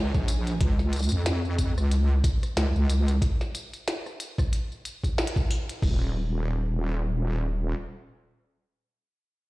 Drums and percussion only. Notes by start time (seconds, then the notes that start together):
0.14 kick, tambourine
0.28 closed hi-hat, tambourine
0.47 closed hi-hat, tambourine
0.61 kick, closed hi-hat, tambourine
0.79 snare, tambourine
0.93 closed hi-hat, tambourine
0.96 tambourine
0.99 tambourine
1.02 tambourine
1.09 closed hi-hat, tambourine
1.12 tambourine
1.26 snare, closed hi-hat, tambourine
1.45 tambourine
1.58 kick, closed hi-hat, tambourine
1.78 cross-stick, tambourine
1.91 closed hi-hat, tambourine
2.24 kick, closed hi-hat, tambourine
2.43 cross-stick, closed hi-hat, tambourine
2.57 snare, closed hi-hat, tambourine
2.76 tambourine
2.90 closed hi-hat, tambourine
3.08 closed hi-hat, tambourine
3.22 kick, closed hi-hat, tambourine
3.41 snare, tambourine
3.55 closed hi-hat, tambourine
3.74 closed hi-hat, tambourine
3.88 snare, closed hi-hat, tambourine
4.06 cross-stick, tambourine
4.20 closed hi-hat, tambourine
4.38 kick, cross-stick, tambourine
4.53 closed hi-hat, tambourine
4.72 tambourine
4.85 closed hi-hat, tambourine
5.04 kick, closed hi-hat, tambourine
5.18 snare, tambourine
5.27 closed hi-hat
5.36 kick, tambourine
5.51 closed hi-hat, tambourine
5.69 closed hi-hat, tambourine
5.82 kick, crash